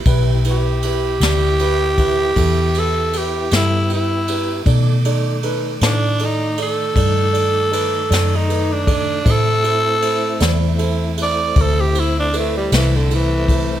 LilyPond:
<<
  \new Staff \with { instrumentName = "Grand piano" } { \time 12/8 \key e \minor \tempo 4. = 52 <e' g' b'>8 <e' g' b'>8 <e' g' b'>8 <e' g' d''>8 <e' g' b'>8 <e' g' b'>8 <e' g' a'>8 <e' g' b'>8 <e' g' b'>8 <e' g' a'>8 <e' g' b'>8 <e' g' b'>8 | <dis' a' d''>8 <dis' a' d''>8 <dis' a' b'>8 <dis' a' d''>8 <dis' a' d''>8 <dis' a' d''>8 <dis' a' d''>8 <dis' a' d''>8 <dis' a' b'>8 <dis' a' d''>8 <dis' a' b'>8 <dis' a' d''>8 | <e' a' c''>8 <e' a' c''>8 <e' a' c''>8 <e' a' d''>8 <e' a' c''>8 <e' a' c''>8 <e' a' c''>8 <e' a' c''>8 <e' a' b'>8 <e' a' c''>8 <e' a' c''>8 <e' a' c''>8 | }
  \new Staff \with { instrumentName = "Tenor saxophone" } { \time 12/8 \key e \minor r8 g'2. a'8 g'8 e'8 e'4 | r4. d'8 dis'8 a'2~ a'16 dis'8 d'8. | a'2 r8 d''8 a'16 g'16 e'16 d'16 a16 g16 e16 d16 e4 | }
  \new Staff \with { instrumentName = "Tonewheel organ" } { \time 12/8 \key e \minor <b e' g'>1. | <dis a d''>1. | <a c' e'>1. | }
  \new Staff \with { instrumentName = "Fingered electric bass" } { \clef bass \time 12/8 \key e \minor b,,4. d,4. e,4. g,4. | b,4. a,4. g,4. fis,4. | a,4. e,4. d,4. c,4. | }
  \new DrumStaff \with { instrumentName = "Drums" } \drummode { \time 12/8 <bd cymr>8 cymr8 cymr8 <cymr sn>8 cymr8 <bd cymr>8 <bd cymr>8 cymr8 cymr8 <cymr sn>8 cymr8 cymr8 | <bd cymr>8 cymr8 cymr8 <cymr sn>8 cymr8 cymr8 <bd cymr>8 cymr8 cymr8 <cymr sn>8 cymr8 <bd cymr>8 | <bd cymr>8 cymr8 cymr8 <cymr sn>8 cymr8 cymr8 <bd cymr>8 cymr8 cymr8 <cymr sn>8 cymr8 <bd cymr>8 | }
>>